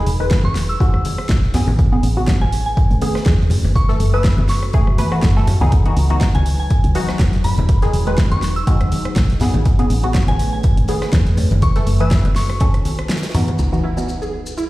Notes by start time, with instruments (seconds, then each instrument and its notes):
Already playing: synth stab D#3 G#3 G#4, ambient pad F#3 D#4 G#4, synth bell B5
0.07 fm bass E1, closed hi-hat, open hi-hat
0.20 synth stab D#3 G#3 B4
0.30 kick, snare, closed hi-hat
0.44 fm bass E1, synth bell C#6, high conga
0.55 snare, closed hi-hat, open hi-hat
0.69 synth bell E6, closed hi-hat
0.80 synth stab D#3 G#3 F#4, kick, closed hi-hat
0.94 fm bass E1, cross-stick
1.05 closed hi-hat, open hi-hat, high conga
1.18 cross-stick
1.29 fm bass B1, kick, snare, closed hi-hat
1.43 snare
1.54 synth stab C#3 B3 G#4, snare, closed hi-hat, open hi-hat, low conga
1.68 fm bass A1, high conga
1.79 ambient pad A3 C#4 G#4 B4, kick, closed hi-hat
1.92 synth stab C#3 B3 G#4
2.03 fm bass A1, closed hi-hat, open hi-hat
2.17 synth stab C#3 B3 F#4
2.27 kick, snare, closed hi-hat
2.41 fm bass A1, synth bell G#5, high conga
2.52 closed hi-hat, open hi-hat
2.66 synth bell G#5
2.77 kick, closed hi-hat
2.91 fm bass A1, closed hi-hat
3.01 synth stab C#3 B3 G#4, closed hi-hat, open hi-hat, high conga
3.15 cross-stick, snare
3.26 fm bass E2, kick, snare, closed hi-hat
3.27 snare
3.40 snare
3.50 open hi-hat, low conga
3.64 fm bass F#1, closed hi-hat, high conga
3.75 ambient pad F#4 A4, synth bell C#6, kick, closed hi-hat
3.88 synth stab E3 A3 A4, snare
4.00 fm bass F#1, closed hi-hat, open hi-hat
4.13 synth stab E3 A3 B4, synth bell E6
4.24 kick, snare, closed hi-hat
4.38 fm bass F#1, high conga
4.48 synth bell C#6, snare, closed hi-hat, open hi-hat
4.63 cross-stick, closed hi-hat
4.73 synth stab E3 A3 G#4, kick, closed hi-hat
4.87 fm bass F#1, cross-stick
4.98 synth stab E3 A3 B4, closed hi-hat, open hi-hat, high conga
5.12 synth stab E3 A3 F#4, cross-stick
5.22 fm bass F#1, kick, snare, closed hi-hat
5.36 synth stab E3 A3 A4, snare
5.47 closed hi-hat, open hi-hat, low conga
5.61 fm bass C#2, synth stab E3 B3 D#4 G#4, high conga
5.72 ambient pad F#3 D#4 B4, kick, closed hi-hat
5.86 synth stab E3 B3 D#4 F#4, closed hi-hat
5.97 fm bass C#2, closed hi-hat, open hi-hat
6.10 synth stab E3 B3 D#4 F#4, closed hi-hat
6.21 kick, snare, closed hi-hat
6.35 fm bass C#2, synth bell G#5, closed hi-hat, high conga
6.46 closed hi-hat, open hi-hat
6.59 synth bell G#5
6.70 kick, closed hi-hat
6.84 fm bass C#2, closed hi-hat
6.95 synth stab E3 B3 D#4 F#4, closed hi-hat, open hi-hat, high conga
7.08 cross-stick, snare
7.19 fm bass E1, kick, snare, closed hi-hat
7.33 snare, closed hi-hat
7.44 ambient pad D#4 G#4, synth bell B5, open hi-hat, low conga
7.58 fm bass E1, closed hi-hat, high conga
7.69 kick, closed hi-hat
7.82 synth stab D#3 G#3 G#4, snare, closed hi-hat
7.93 fm bass E1, closed hi-hat, open hi-hat
8.07 synth stab D#3 G#3 B4, closed hi-hat
8.18 kick, snare, closed hi-hat
8.31 fm bass E1, synth bell C#6, closed hi-hat, high conga
8.42 snare, closed hi-hat, open hi-hat
8.56 synth bell E6, closed hi-hat
8.67 synth stab D#3 G#3 F#4, kick, closed hi-hat
8.81 fm bass E1, cross-stick, closed hi-hat
8.92 closed hi-hat, open hi-hat, high conga
9.05 cross-stick, closed hi-hat
9.16 fm bass B1, kick, snare, closed hi-hat
9.30 snare, closed hi-hat
9.40 synth stab C#3 B3 G#4, snare, closed hi-hat, open hi-hat, low conga
9.54 fm bass A1, closed hi-hat, high conga
9.65 ambient pad A3 C#4 B4, kick, closed hi-hat
9.79 synth stab C#3 B3 G#4, closed hi-hat
9.90 fm bass A1, closed hi-hat, open hi-hat
10.03 synth stab C#3 B3 F#4, closed hi-hat
10.14 kick, snare, closed hi-hat
10.28 fm bass A1, synth bell G#5, closed hi-hat, high conga
10.39 closed hi-hat, open hi-hat
10.53 synth bell G#5
10.63 kick, closed hi-hat
10.77 fm bass A1, closed hi-hat
10.88 synth stab C#3 B3 G#4, closed hi-hat, open hi-hat, high conga
11.02 cross-stick, snare, closed hi-hat
11.13 fm bass E2, kick, snare, closed hi-hat
11.27 snare, closed hi-hat
11.37 open hi-hat, low conga
11.51 fm bass F#1, closed hi-hat, high conga
11.62 synth bell C#6, kick, closed hi-hat
11.75 synth stab E3 A3 A4, snare, closed hi-hat
11.87 fm bass F#1, closed hi-hat, open hi-hat
12.00 synth stab E3 A3 B4, synth bell E6, closed hi-hat
12.11 kick, snare, closed hi-hat
12.25 fm bass F#1, closed hi-hat, high conga
12.36 synth bell C#6, snare, closed hi-hat, open hi-hat
12.49 cross-stick, closed hi-hat
12.60 synth stab D#3 C#4 A4, kick, closed hi-hat
12.74 fm bass B1, cross-stick, closed hi-hat
12.85 closed hi-hat, open hi-hat, high conga
12.99 cross-stick, closed hi-hat
13.09 snare, closed hi-hat
13.16 snare, closed hi-hat
13.23 snare, closed hi-hat
13.29 snare, closed hi-hat
13.34 synth stab E3 B3 D#4 F#4, closed hi-hat, open hi-hat, low conga
13.48 closed hi-hat, high conga
13.59 fm bass C#2, ambient pad F#3 D#4 B4, closed hi-hat, impact, maracas
13.72 synth stab E3 B3 D#4 F#4, maracas
13.83 synth arpeggio sound E4, closed hi-hat
13.97 synth stab E3 B3 D#4 F#4, maracas
14.08 closed hi-hat, maracas
14.22 synth arpeggio sound G#4, maracas
14.33 closed hi-hat
14.46 maracas
14.57 synth arpeggio sound E4, closed hi-hat, maracas